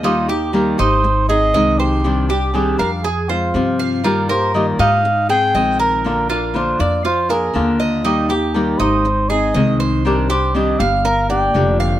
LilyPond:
<<
  \new Staff \with { instrumentName = "Cuban tres" } { \time 4/4 \key ees \major \tempo 4 = 120 ees'8 g'4 ees'4 aes'8 ees''8 c''8~ | c''8 g'4 f''8 aes'8 c''4 f''8 | f'8 bes'4 ees'4 aes'8 ees''8 bes'8~ | bes'8 f'4 d''8 f'8 bes'4 ees''8 |
ees'8 g'4 ees'4 aes'8 ees''8 c''8~ | c''8 g'4 f''8 bes'8 d''4 f''8 | }
  \new Staff \with { instrumentName = "Muted trumpet" } { \time 4/4 \key ees \major f'8 g'8 bes'8 c''4 ees''4 g'8~ | g'8 g'8 aes'8 bes'8 aes'8 f'4 r8 | bes'8 c''8 ees''8 f''4 g''4 bes'8~ | bes'8 bes'8 c''8 d''8 c''8 aes'4 r8 |
g'8 g'8 bes'8 c''4 ees''4 r8 | bes'8 c''8 ees''8 f''4 g''4 r8 | }
  \new Staff \with { instrumentName = "Nylon-string guitar" } { \time 4/4 \key ees \major <ees g bes ees' g'>8 <bes ees' g'>8 <ees g bes ees' g'>8 <bes ees' g'>8 r8 <c' ees' aes'>8 <ees aes c' ees' aes'>4 | <c ees g d' g'>8 <g d' g'>8 <c ees g d' g'>8 <g d' g'>8 r8 <aes c' f'>8 <c f c' f'>4 | <ees g bes f' g'>8 <bes f' g'>8 <ees g bes f' g'>8 <bes f' g'>8 r8 <aes c' aes'>8 <ees aes c' aes'>4 | <d bes d' f'>8 <bes d' f'>8 <d bes d' f'>8 <bes d' f'>8 r8 <bes d' f'>8 <d bes d' f'>4 |
<ees g bes ees' g'>8 <bes ees' g'>8 <ees g bes ees' g'>8 <bes ees' g'>8 r8 <c' ees' aes'>8 <ees aes c' ees' aes'>4 | <c ees g d' g'>8 <g d' g'>8 <c ees g d' g'>8 <g d' g'>8 r8 <bes d' g'>8 <d f bes d' g'>4 | }
  \new Staff \with { instrumentName = "Upright bass" } { \clef bass \time 4/4 \key ees \major ees,4. aes,,4. c,4~ | c,4. f,4. g,4~ | g,4. aes,4. bes,,4~ | bes,,4. f,4. ees,4~ |
ees,4. aes,,4. c,4~ | c,4. g,,4. f,,4 | }
>>